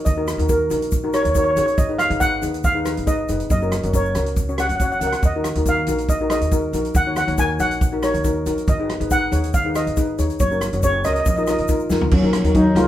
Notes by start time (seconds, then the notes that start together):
0.05 D#2 D#5, kick, closed hi-hat, shaker
0.17 D#4 F#4 A#4
0.28 cross-stick, closed hi-hat, shaker
0.38 D#2 D#4 F#4 A#4, closed hi-hat
0.49 D#4 F#4 A#4, kick, closed hi-hat, shaker
0.70 A#1 D#4 F#4 A#4, closed hi-hat, shaker
0.82 closed hi-hat, shaker
0.91 kick, closed hi-hat, shaker
1.04 D#4 F#4 A#4
1.13 D#4 F#4 A#4 C#5, cross-stick, closed hi-hat, shaker
1.23 D#2 C#5, closed hi-hat, shaker
1.29 C#5
1.35 D#4 F#4 A#4 C#5, kick, closed hi-hat, shaker
1.44 C#5
1.51 C#5
1.56 A1 D#4 F#4 G#4 C#5, closed hi-hat, shaker
1.66 C#5, closed hi-hat, shaker
1.77 G#1 D#5, kick, closed hi-hat, shaker
1.89 D#4 G#4 B4
1.99 F5, cross-stick, closed hi-hat, shaker
2.10 G#1 D#4 G#4 B4, closed hi-hat
2.20 D#4 G#4 B4 F#5, kick, closed hi-hat, shaker
2.42 D#2 D#4 G#4 B4, closed hi-hat, shaker
2.54 closed hi-hat, shaker
2.64 F5, kick, closed hi-hat, shaker
2.75 D#4 G#4 B4
2.85 D#4 G#4 B4, cross-stick, closed hi-hat, shaker
2.97 G#1, closed hi-hat, shaker
3.06 D#4 G#4 B4 D#5, kick, closed hi-hat, shaker
3.29 F1 D#4 G#4 B4, closed hi-hat, shaker
3.40 closed hi-hat, shaker
3.50 F#1 D#5, kick, closed hi-hat, shaker
3.62 C#4 F#4 A#4, shaker
3.72 cross-stick, closed hi-hat, shaker
3.83 F#1 C#4 F#4 A#4, closed hi-hat, shaker
3.93 C#4 F#4 A#4 C#5, kick, closed hi-hat, shaker
4.05 shaker
4.15 C#2 C#4 F#4 A#4, cross-stick, closed hi-hat, shaker
4.26 closed hi-hat
4.36 kick, closed hi-hat, shaker
4.49 C#4 F#4 C#5, shaker
4.58 C#4 F#4 C#5 F#5, cross-stick, closed hi-hat, shaker
4.68 F#1 F#5, closed hi-hat, shaker
4.76 F#5, closed hi-hat
4.80 C#4 F#4 C#5, kick, shaker
4.84 F#5
4.92 F#5, shaker
5.00 C#2 C#4 F#4 A#4 F#5, closed hi-hat, shaker
5.07 F#5
5.12 F#5, cross-stick, closed hi-hat, shaker
5.22 D#2 D#5, kick, closed hi-hat, shaker
5.35 D#4 F#4 A#4
5.44 cross-stick, closed hi-hat, shaker
5.55 D#2 D#4 F#4 A#4, closed hi-hat
5.65 D#4 F#4 A#4 F5, kick, closed hi-hat, shaker
5.87 A#1 D#4 F#4 A#4, closed hi-hat, shaker
5.98 closed hi-hat, shaker
6.08 D#5, kick, closed hi-hat, shaker
6.21 D#4 F#4 A#4
6.30 D#4 F#4 G#4 D#5, cross-stick, closed hi-hat, shaker
6.41 D#2, closed hi-hat, shaker
6.51 D#4 F#4 A#4, kick, closed hi-hat, shaker
6.73 A#1 D#4 F#4 A#4, closed hi-hat, shaker
6.85 closed hi-hat, shaker
6.95 D#2 F#5, kick, closed hi-hat, shaker
7.07 D#4 F#4 C#5
7.16 F#5, cross-stick, closed hi-hat, shaker
7.27 D#2 D#4 F#4 C#5, closed hi-hat
7.38 D#4 F#4 A#4 G#5, kick, closed hi-hat, shaker
7.59 A#1 D#4 F#4 C#5 F#5, closed hi-hat, shaker
7.71 closed hi-hat, shaker
7.81 kick, closed hi-hat, shaker
7.92 D#4 F#4 A#4
8.03 D#4 F#4 A#4 C#5, cross-stick, closed hi-hat, shaker
8.14 D#2, closed hi-hat, shaker
8.24 D#4 F#4 A#4, kick, closed hi-hat, shaker
8.46 A#1 D#4 F#4 A#4, closed hi-hat, shaker
8.58 closed hi-hat, shaker
8.68 G#1 D#5, kick, closed hi-hat, shaker
8.80 D#4 G#4 B4
8.90 cross-stick, closed hi-hat
9.00 G#1 D#4 G#4 B4, closed hi-hat
9.11 D#4 G#4 B4 F#5, kick, closed hi-hat, shaker
9.32 D#2 D#4 G#4 C#5, closed hi-hat, shaker
9.44 closed hi-hat, shaker
9.54 F5, kick, closed hi-hat, shaker
9.65 D#4 G#4 B4
9.75 D#4 G#4 B4 D#5, cross-stick, closed hi-hat, shaker
9.86 G#1, closed hi-hat, shaker
9.97 D#4 G#4 B4, kick, closed hi-hat, shaker
10.18 D#2 D#4 G#4 C#5, closed hi-hat, shaker
10.30 closed hi-hat, shaker
10.40 F#1 C#5, kick, closed hi-hat, shaker
10.51 C#4 F#4 A#4, shaker
10.61 cross-stick, closed hi-hat, shaker
10.73 F#1 C#4 F#4 C#5, closed hi-hat, shaker
10.83 C#4 F#4 G#4 C#5, kick, closed hi-hat, shaker
11.04 C#2 C#4 F#4 A#4 D#5, cross-stick, closed hi-hat, shaker
11.13 D#5, closed hi-hat, shaker
11.20 D#5
11.26 A#1 D#5, kick, closed hi-hat, shaker
11.36 D#4 F4 A#4 D#5, shaker
11.43 D#5, shaker
11.47 D#4 F4 A#4 D#5, cross-stick, closed hi-hat
11.58 A#1 D#5, closed hi-hat
11.68 D#4 F4 A#4, kick, closed hi-hat, shaker
11.80 shaker
11.90 F2 D#4 F4 A#4, snare, shaker
12.01 floor tom
12.11 D#2 F#3 C#4, kick, crash
12.22 A#1 D#4 F#4 A#4
12.33 cross-stick, closed hi-hat
12.44 D#2 D#4 F#4 A#4, closed hi-hat
12.55 F#3 D#4 F#4 C#5, kick, closed hi-hat
12.75 C#2 G#3 D#4 F4 F#4 A#4, cross-stick, closed hi-hat